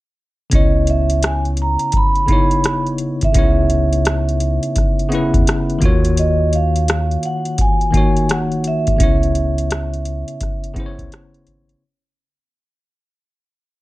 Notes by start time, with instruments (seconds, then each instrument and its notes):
0.50 sub bass C#2, tine electric piano C#3 B3 C#4, kick, closed hi-hat
0.54 tine electric piano E4 C#5, vibraphone D#5
0.87 vibraphone E5, closed hi-hat
1.10 closed hi-hat
1.23 vibraphone G#5, cross-stick, closed hi-hat
1.45 closed hi-hat
1.57 closed hi-hat
1.62 vibraphone A#5
1.79 closed hi-hat
1.92 kick, closed hi-hat
1.97 vibraphone B5
2.15 closed hi-hat
2.26 tine electric piano C#3 B3 D#4, kick, closed hi-hat
2.31 tine electric piano E4 C#5
2.51 closed hi-hat
2.64 cross-stick, closed hi-hat
2.87 closed hi-hat
2.98 closed hi-hat
3.21 sub bass G#1, vibraphone E5, kick, closed hi-hat
3.32 sub bass C#2, tine electric piano C#3 B3 C#4, kick, closed hi-hat
3.37 tine electric piano E4 C#5
3.70 closed hi-hat
3.93 closed hi-hat
4.05 cross-stick, closed hi-hat
4.29 closed hi-hat
4.40 closed hi-hat
4.63 closed hi-hat
4.76 kick, cross-stick, closed hi-hat
4.99 closed hi-hat
5.09 tine electric piano C#3 B3 C#4, closed hi-hat
5.13 tine electric piano E4 B4
5.34 sub bass E2, kick, closed hi-hat
5.47 cross-stick, closed hi-hat
5.70 closed hi-hat
5.79 tine electric piano D#3 A#3 F4, kick, closed hi-hat
5.83 sub bass D#2, tine electric piano F#4 C#5
6.05 closed hi-hat
6.17 vibraphone D#5, closed hi-hat
6.53 vibraphone F5, closed hi-hat
6.76 closed hi-hat
6.88 cross-stick, closed hi-hat
7.11 closed hi-hat
7.23 vibraphone F#5, closed hi-hat
7.45 closed hi-hat
7.58 vibraphone G#5, kick, closed hi-hat
7.81 closed hi-hat
7.91 tine electric piano D#3 A#3 D#4, kick, closed hi-hat
7.96 tine electric piano F#4 C#5
8.17 closed hi-hat
8.29 vibraphone F#5, cross-stick, closed hi-hat
8.52 closed hi-hat
8.64 vibraphone E5, closed hi-hat
8.87 sub bass G#1, kick, closed hi-hat
8.97 sub bass C#2, tine electric piano C#3 B3 C#4, kick, closed hi-hat
9.02 tine electric piano E4 C#5
9.23 closed hi-hat
9.35 closed hi-hat
9.58 closed hi-hat
9.71 cross-stick, closed hi-hat
9.94 closed hi-hat
10.05 closed hi-hat
10.28 closed hi-hat
10.41 kick, cross-stick, closed hi-hat
10.64 closed hi-hat
10.73 tine electric piano C#3 B3 C#4, kick, closed hi-hat
10.78 tine electric piano E4 C5
10.86 tine electric piano C#5
10.99 sub bass C#2, kick, closed hi-hat
11.12 cross-stick, closed hi-hat
11.34 closed hi-hat
11.47 sub bass G#1, closed hi-hat
11.69 closed hi-hat